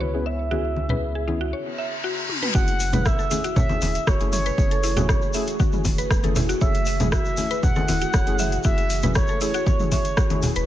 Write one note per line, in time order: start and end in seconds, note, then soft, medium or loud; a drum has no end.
0.00 1.53 C#2 medium
0.00 1.49 C#3 medium
0.00 0.11 B3 medium
0.00 1.49 B3 medium
0.00 0.11 C#4 medium
0.00 0.11 E4 medium
0.00 1.49 E4 medium
0.00 0.11 G#4 medium
0.00 1.49 G#4 medium
0.00 0.27 B4 medium
0.00 0.12 C#5 medium
0.00 high conga medium
0.14 0.48 B3 loud
0.14 0.48 C#4 medium
0.14 0.48 E4 medium
0.14 0.48 G#4 loud
0.26 1.53 E5 loud
0.26 0.33 E5 medium
0.51 0.69 B3 medium
0.51 0.69 C#4 medium
0.51 0.69 E4 medium
0.51 0.64 F#4 loud
0.51 0.69 G#4 loud
0.51 high conga medium
0.76 high conga medium
0.89 1.25 B3 medium
0.89 1.25 C#4 medium
0.89 1.25 E4 medium
0.89 1.25 G#4 medium
0.89 1.01 B4 loud
0.89 low conga medium
1.15 1.27 G#4 medium
1.27 1.39 B3 medium
1.27 1.39 C#4 medium
1.27 1.39 E4 medium
1.27 1.39 G#4 loud
1.27 high conga medium
1.41 1.47 F#4 loud
1.53 1.65 C#5 medium
1.53 reverse cymbal medium
1.78 1.86 E5 medium
2.04 2.16 F#4 loud
2.29 high tom medium
2.42 2.54 B4 loud
2.42 mid tom medium
2.55 3.11 F#1 loud
2.55 10.64 E3 medium
2.55 2.73 A3 medium
2.55 10.64 A3 medium
2.55 2.72 C#4 medium
2.55 2.73 E4 medium
2.55 10.64 F#4 medium
2.55 2.67 F#4 loud
2.55 2.73 G#4 loud
2.55 10.64 G#4 medium
2.55 3.07 F#5 loud
2.55 kick loud
2.55 impact medium
2.55 shaker soft
2.67 closed hi-hat soft
2.67 shaker soft
2.80 open hi-hat medium
2.80 shaker medium
2.93 3.28 A3 medium
2.93 3.28 C#4 medium
2.93 3.28 E4 medium
2.93 3.28 G#4 medium
2.93 3.05 B4 loud
2.93 closed hi-hat medium
2.93 mid tom loud
2.93 low conga medium
2.93 shaker soft
3.05 3.56 E5 loud
3.05 kick loud
3.05 cross-stick loud
3.05 shaker medium
3.19 3.30 A4 medium
3.19 shaker soft
3.31 3.42 A3 medium
3.31 3.42 C#4 medium
3.31 3.42 E4 medium
3.31 3.43 E4 medium
3.31 3.42 G#4 loud
3.31 open hi-hat medium
3.31 high conga medium
3.31 shaker loud
3.44 3.51 F#4 loud
3.44 closed hi-hat medium
3.44 shaker soft
3.56 3.68 C#5 medium
3.56 4.09 E5 loud
3.56 kick loud
3.56 low conga loud
3.56 shaker medium
3.69 4.17 A3 medium
3.69 4.17 C#4 medium
3.69 4.17 E4 medium
3.69 4.17 G#4 medium
3.69 high conga loud
3.69 shaker soft
3.82 3.98 E1 loud
3.82 3.89 E5 medium
3.82 open hi-hat loud
3.82 high conga loud
3.82 shaker medium
3.95 closed hi-hat medium
3.95 shaker soft
4.07 4.15 E1 loud
4.07 4.20 F#4 loud
4.07 4.32 C#5 medium
4.07 kick loud
4.07 cross-stick loud
4.07 high conga medium
4.07 shaker medium
4.20 4.50 F#1 medium
4.20 4.55 A3 loud
4.20 4.55 C#4 medium
4.20 4.55 E4 medium
4.20 4.55 G#4 loud
4.20 closed hi-hat soft
4.20 shaker soft
4.33 5.30 C#5 medium
4.33 mid tom medium
4.33 open hi-hat medium
4.33 shaker loud
4.46 4.58 B4 loud
4.46 closed hi-hat medium
4.46 shaker soft
4.58 5.14 F#1 loud
4.58 4.76 A3 medium
4.58 4.76 C#4 medium
4.58 4.76 E4 medium
4.58 4.76 G#4 loud
4.58 kick loud
4.58 shaker medium
4.71 4.83 A4 medium
4.71 closed hi-hat soft
4.71 shaker soft
4.83 4.95 E4 medium
4.83 open hi-hat loud
4.83 shaker medium
4.97 5.31 A3 medium
4.97 5.31 C#4 medium
4.97 5.31 E4 medium
4.97 5.03 F#4 loud
4.97 5.31 G#4 medium
4.97 closed hi-hat medium
4.97 mid tom medium
4.97 low conga loud
4.97 shaker soft
5.09 5.21 C#5 medium
5.09 kick loud
5.09 cross-stick loud
5.09 shaker medium
5.22 shaker soft
5.33 5.46 A3 medium
5.33 5.46 C#4 medium
5.33 5.46 E4 medium
5.33 5.46 G#4 loud
5.33 5.42 E5 medium
5.33 open hi-hat medium
5.33 shaker loud
5.47 closed hi-hat medium
5.47 shaker soft
5.60 5.72 F#4 loud
5.60 kick loud
5.60 high conga loud
5.60 shaker medium
5.72 6.21 A3 medium
5.72 6.21 C#4 medium
5.72 6.21 E4 medium
5.72 6.21 G#4 medium
5.72 mid tom medium
5.72 shaker soft
5.85 6.01 E1 loud
5.85 kick medium
5.85 open hi-hat loud
5.85 high conga loud
5.85 shaker medium
5.98 6.10 B4 loud
5.98 closed hi-hat medium
5.98 shaker soft
6.11 6.19 E1 loud
6.11 kick loud
6.11 cross-stick loud
6.11 shaker medium
6.23 6.54 F#1 medium
6.23 6.58 A3 loud
6.23 6.58 C#4 medium
6.23 6.58 E4 medium
6.23 6.58 G#4 loud
6.23 6.35 A4 medium
6.23 closed hi-hat soft
6.23 high conga loud
6.23 shaker soft
6.36 6.48 E4 medium
6.36 open hi-hat medium
6.36 low conga loud
6.36 shaker medium
6.49 6.56 F#4 loud
6.49 closed hi-hat medium
6.49 shaker soft
6.61 7.17 F#1 loud
6.61 6.79 A3 medium
6.61 6.79 C#4 medium
6.61 6.79 E4 medium
6.61 6.79 G#4 loud
6.61 6.73 C#5 medium
6.61 7.09 E5 loud
6.61 kick loud
6.61 shaker medium
6.74 closed hi-hat soft
6.74 shaker soft
6.86 6.94 E5 medium
6.86 open hi-hat loud
6.86 shaker loud
7.00 7.35 A3 medium
7.00 7.35 C#4 medium
7.00 7.35 E4 medium
7.00 7.35 G#4 medium
7.00 closed hi-hat medium
7.00 mid tom medium
7.00 low conga loud
7.00 shaker soft
7.12 7.25 F#4 loud
7.12 7.60 E5 loud
7.12 kick loud
7.12 cross-stick loud
7.12 shaker medium
7.25 shaker soft
7.37 7.49 A3 loud
7.37 7.49 C#4 medium
7.37 7.49 E4 medium
7.37 7.49 G#4 loud
7.37 open hi-hat medium
7.37 high conga medium
7.37 shaker loud
7.51 7.62 B4 loud
7.51 closed hi-hat medium
7.51 shaker soft
7.63 8.61 F#5 loud
7.63 kick loud
7.63 low conga loud
7.63 shaker medium
7.76 8.24 A3 medium
7.76 8.24 C#4 medium
7.76 8.24 E4 medium
7.76 8.24 G#4 medium
7.76 7.88 A4 medium
7.76 high conga loud
7.76 shaker soft
7.88 8.04 E1 loud
7.88 8.00 E4 medium
7.88 open hi-hat medium
7.88 high conga loud
7.88 shaker medium
8.01 8.08 F#4 loud
8.01 closed hi-hat medium
8.01 shaker soft
8.13 8.22 E1 loud
8.13 8.26 C#5 medium
8.13 kick loud
8.13 cross-stick loud
8.13 high conga medium
8.13 shaker medium
8.27 8.57 F#1 medium
8.27 8.62 A3 loud
8.27 8.62 C#4 medium
8.27 8.62 E4 medium
8.27 8.62 G#4 loud
8.27 closed hi-hat soft
8.27 shaker soft
8.39 8.46 E5 medium
8.39 mid tom medium
8.39 open hi-hat medium
8.39 shaker loud
8.52 closed hi-hat medium
8.52 shaker soft
8.63 9.21 F#1 loud
8.63 8.83 A3 medium
8.63 8.83 C#4 medium
8.63 8.83 E4 medium
8.63 8.77 F#4 loud
8.63 8.83 G#4 loud
8.63 9.12 E5 loud
8.63 kick loud
8.63 shaker medium
8.78 closed hi-hat soft
8.78 shaker soft
8.90 open hi-hat medium
8.90 shaker medium
9.02 9.38 A3 medium
9.02 9.38 C#4 medium
9.02 9.38 E4 medium
9.02 9.38 G#4 medium
9.02 9.15 B4 loud
9.02 closed hi-hat medium
9.02 mid tom medium
9.02 low conga medium
9.02 shaker soft
9.15 9.39 C#5 medium
9.15 kick loud
9.15 cross-stick loud
9.15 shaker medium
9.28 9.41 A4 medium
9.28 shaker soft
9.41 9.52 A3 medium
9.41 9.52 C#4 medium
9.41 9.52 E4 medium
9.41 9.53 E4 medium
9.41 9.52 G#4 loud
9.41 9.88 C#5 loud
9.41 open hi-hat medium
9.41 shaker loud
9.54 9.61 F#4 loud
9.54 closed hi-hat medium
9.54 shaker soft
9.67 9.78 C#5 medium
9.67 kick loud
9.67 high conga medium
9.67 shaker medium
9.79 10.27 A3 medium
9.79 10.27 C#4 medium
9.79 10.27 E4 medium
9.79 10.27 G#4 medium
9.79 mid tom medium
9.79 shaker soft
9.92 10.39 C#5 medium
9.92 9.99 E5 medium
9.92 kick medium
9.92 open hi-hat medium
9.92 high conga medium
9.92 shaker loud
10.05 closed hi-hat medium
10.05 shaker soft
10.17 10.30 F#4 loud
10.17 kick loud
10.17 cross-stick loud
10.17 shaker medium
10.30 10.65 A3 loud
10.30 10.65 C#4 medium
10.30 10.65 E4 medium
10.30 10.65 G#4 loud
10.30 closed hi-hat soft
10.30 high conga loud
10.30 shaker soft
10.42 open hi-hat medium
10.42 low conga medium
10.42 shaker medium
10.55 10.63 E1 medium
10.55 10.66 B4 loud
10.55 closed hi-hat medium
10.55 shaker soft